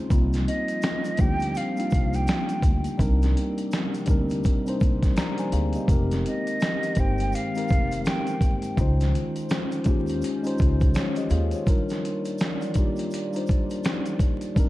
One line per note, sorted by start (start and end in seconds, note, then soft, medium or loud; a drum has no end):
0.00 0.12 G#3 medium
0.00 0.11 C4 medium
0.00 0.12 C#4 medium
0.00 0.12 D#4 medium
0.00 0.12 F4 medium
0.00 2.95 F4 medium
0.00 0.12 G#4 loud
0.09 0.45 C2 loud
0.09 2.97 F3 medium
0.09 0.87 G3 medium
0.09 0.88 A#3 medium
0.09 8.74 A#3 medium
0.09 2.97 C4 medium
0.09 0.88 C4 medium
0.09 0.89 D#4 medium
0.09 kick loud
0.09 closed hi-hat medium
0.09 shaker medium
0.13 0.89 F4 medium
0.33 snare soft
0.33 closed hi-hat soft
0.33 shaker soft
0.48 1.22 D#5 medium
0.48 closed hi-hat medium
0.68 closed hi-hat soft
0.68 shaker soft
0.82 finger snap medium
0.82 snare loud
0.82 closed hi-hat medium
0.82 shaker medium
1.04 closed hi-hat soft
1.04 shaker soft
1.17 1.53 D2 medium
1.17 1.57 G3 medium
1.17 1.57 A#3 medium
1.17 1.58 D4 medium
1.17 1.58 D#4 medium
1.17 1.59 G5 loud
1.17 kick medium
1.17 closed hi-hat medium
1.17 shaker medium
1.22 1.59 G4 medium
1.40 closed hi-hat soft
1.40 shaker soft
1.55 2.17 F5 medium
1.55 closed hi-hat medium
1.55 shaker medium
1.76 2.62 G3 medium
1.76 2.62 A#3 medium
1.76 2.63 D4 medium
1.76 2.63 D#4 medium
1.76 closed hi-hat medium
1.76 shaker soft
1.80 2.64 F4 medium
1.90 2.26 C2 medium
1.90 kick loud
1.90 shaker medium
1.94 closed hi-hat medium
2.13 2.64 G5 medium
2.13 closed hi-hat soft
2.13 shaker soft
2.27 finger snap medium
2.27 snare loud
2.27 closed hi-hat medium
2.27 shaker medium
2.49 closed hi-hat soft
2.49 shaker medium
2.62 2.84 D2 medium
2.62 kick loud
2.62 closed hi-hat medium
2.62 shaker soft
2.84 closed hi-hat soft
2.84 shaker soft
2.98 3.33 C2 loud
2.98 5.86 C3 medium
2.98 3.76 G3 medium
2.98 3.77 C4 medium
2.98 5.86 C4 medium
2.98 3.77 D4 medium
2.98 3.78 D#4 medium
2.98 8.74 G4 medium
2.98 kick loud
2.98 closed hi-hat medium
2.98 shaker medium
3.02 3.78 A#4 medium
3.22 snare soft
3.22 closed hi-hat soft
3.22 shaker soft
3.37 closed hi-hat medium
3.58 closed hi-hat soft
3.58 shaker soft
3.71 finger snap medium
3.71 snare medium
3.71 closed hi-hat medium
3.71 shaker medium
3.94 closed hi-hat soft
3.94 shaker soft
4.06 4.42 D2 medium
4.06 4.46 G3 medium
4.06 4.46 C4 medium
4.06 4.47 D4 medium
4.06 4.47 D#4 medium
4.06 kick medium
4.06 closed hi-hat medium
4.06 shaker medium
4.10 4.48 A#4 medium
4.30 closed hi-hat soft
4.30 shaker soft
4.44 kick medium
4.44 closed hi-hat medium
4.44 shaker medium
4.65 5.51 G3 medium
4.65 5.51 C4 medium
4.65 5.52 D4 medium
4.65 5.53 D#4 medium
4.65 closed hi-hat soft
4.65 shaker soft
4.69 4.82 C5 loud
4.80 5.15 C2 medium
4.80 kick loud
4.80 closed hi-hat medium
4.80 shaker medium
5.03 kick medium
5.03 snare soft
5.03 closed hi-hat soft
5.03 shaker soft
5.16 5.38 D5 soft
5.16 5.38 A#5 medium
5.16 finger snap medium
5.16 snare loud
5.16 closed hi-hat medium
5.16 shaker medium
5.38 5.52 C5 medium
5.38 5.52 G#5 medium
5.38 closed hi-hat soft
5.38 shaker medium
5.52 5.74 D2 medium
5.52 5.74 G#4 medium
5.52 5.74 F5 medium
5.52 closed hi-hat medium
5.52 shaker soft
5.73 5.89 G4 medium
5.73 6.10 D#5 medium
5.73 closed hi-hat soft
5.73 shaker medium
5.87 6.23 F1 medium
5.87 14.52 D#3 medium
5.87 6.65 G#3 medium
5.87 8.74 G#3 medium
5.87 6.66 C4 medium
5.87 6.66 D#4 medium
5.87 6.67 G4 medium
5.87 kick loud
5.87 closed hi-hat medium
5.87 shaker medium
5.92 6.68 A#4 medium
6.11 snare soft
6.11 closed hi-hat medium
6.11 shaker soft
6.26 7.01 D#5 medium
6.26 closed hi-hat medium
6.47 closed hi-hat soft
6.47 shaker soft
6.60 finger snap medium
6.60 snare loud
6.60 closed hi-hat medium
6.60 shaker medium
6.83 closed hi-hat soft
6.83 shaker soft
6.95 7.31 G1 medium
6.95 7.35 G#3 medium
6.95 7.35 C4 medium
6.95 7.36 D#4 medium
6.95 7.37 G4 medium
6.95 kick medium
6.95 closed hi-hat medium
6.95 shaker medium
6.99 7.37 C5 medium
6.99 7.36 G5 loud
7.18 closed hi-hat soft
7.18 shaker soft
7.32 8.05 F5 loud
7.32 closed hi-hat medium
7.32 shaker medium
7.54 8.40 G#3 medium
7.54 8.41 C4 medium
7.54 8.41 D#4 medium
7.54 8.42 G4 medium
7.54 closed hi-hat medium
7.54 shaker soft
7.58 8.42 A#4 medium
7.68 8.04 F1 medium
7.68 kick loud
7.68 shaker medium
7.73 closed hi-hat medium
7.91 closed hi-hat medium
7.91 shaker soft
8.05 8.60 G5 medium
8.05 finger snap medium
8.05 snare loud
8.05 closed hi-hat medium
8.05 shaker medium
8.27 closed hi-hat soft
8.27 shaker medium
8.41 8.62 G1 medium
8.41 kick loud
8.41 closed hi-hat medium
8.41 shaker soft
8.62 closed hi-hat soft
8.62 shaker medium
8.76 9.12 C#2 loud
8.76 9.54 G#3 medium
8.76 9.55 C#4 medium
8.76 11.64 C#4 medium
8.76 9.56 D#4 medium
8.76 14.52 F4 medium
8.76 9.56 F4 medium
8.76 11.64 C5 medium
8.76 kick loud
8.76 closed hi-hat medium
8.76 shaker medium
8.81 9.57 C5 medium
9.00 snare soft
9.00 closed hi-hat soft
9.00 shaker soft
9.15 closed hi-hat medium
9.36 closed hi-hat soft
9.36 shaker soft
9.49 finger snap medium
9.49 snare loud
9.49 closed hi-hat medium
9.49 shaker medium
9.72 closed hi-hat soft
9.72 shaker soft
9.84 10.20 D#2 medium
9.84 10.24 G#3 medium
9.84 10.25 C#4 medium
9.84 10.25 D#4 medium
9.84 10.26 F4 medium
9.84 kick medium
9.84 closed hi-hat medium
9.84 shaker medium
9.89 10.26 G4 medium
10.07 closed hi-hat soft
10.07 shaker soft
10.22 closed hi-hat medium
10.22 shaker medium
10.43 11.29 G#3 medium
10.43 11.30 C#4 medium
10.43 11.30 D#4 medium
10.43 10.59 F4 medium
10.43 closed hi-hat medium
10.43 shaker soft
10.47 10.60 C5 medium
10.58 10.93 C#2 medium
10.58 kick loud
10.58 shaker medium
10.62 closed hi-hat medium
10.80 kick medium
10.80 closed hi-hat soft
10.80 shaker soft
10.94 11.16 F4 soft
10.94 11.16 C#5 medium
10.94 finger snap medium
10.94 snare loud
10.94 closed hi-hat medium
10.94 shaker medium
11.16 11.31 G4 medium
11.16 11.30 D#5 medium
11.16 closed hi-hat soft
11.16 shaker medium
11.30 11.52 D#2 medium
11.30 11.53 G#4 medium
11.30 11.52 F5 medium
11.30 closed hi-hat medium
11.30 shaker soft
11.51 11.68 F4 soft
11.51 11.88 C#5 medium
11.51 closed hi-hat soft
11.51 shaker medium
11.66 12.44 G3 medium
11.66 14.69 A#3 medium
11.66 12.44 D4 medium
11.66 12.45 D#4 medium
11.66 12.45 F4 medium
11.66 14.53 D5 medium
11.66 kick loud
11.66 closed hi-hat medium
11.66 shaker medium
11.70 12.46 A#4 loud
11.89 snare soft
11.89 closed hi-hat soft
11.89 shaker soft
12.05 closed hi-hat medium
12.25 closed hi-hat soft
12.25 shaker soft
12.38 finger snap medium
12.38 snare loud
12.38 closed hi-hat medium
12.38 shaker medium
12.61 closed hi-hat soft
12.61 shaker soft
12.74 13.13 G3 medium
12.74 13.14 D4 medium
12.74 13.15 D#4 medium
12.74 13.15 F4 medium
12.74 kick medium
12.74 closed hi-hat medium
12.74 shaker medium
12.79 13.16 G4 medium
12.96 closed hi-hat soft
12.96 shaker soft
13.11 closed hi-hat medium
13.11 shaker medium
13.33 14.19 G3 medium
13.33 14.19 D4 medium
13.33 14.20 D#4 medium
13.33 14.20 F4 medium
13.33 closed hi-hat soft
13.33 shaker soft
13.37 14.21 C5 medium
13.47 kick loud
13.47 shaker medium
13.51 closed hi-hat medium
13.70 closed hi-hat soft
13.70 shaker soft
13.84 finger snap medium
13.84 snare loud
13.84 closed hi-hat medium
13.84 shaker medium
14.06 closed hi-hat soft
14.06 shaker medium
14.19 kick medium
14.19 closed hi-hat medium
14.19 shaker soft
14.41 closed hi-hat soft
14.41 shaker soft
14.55 14.69 D#3 medium
14.55 14.69 G3 medium
14.55 14.69 C4 medium
14.55 14.69 D4 medium
14.55 14.69 D#4 medium
14.55 14.69 G4 medium
14.55 kick loud
14.55 closed hi-hat medium
14.55 shaker medium
14.60 14.69 A#4 loud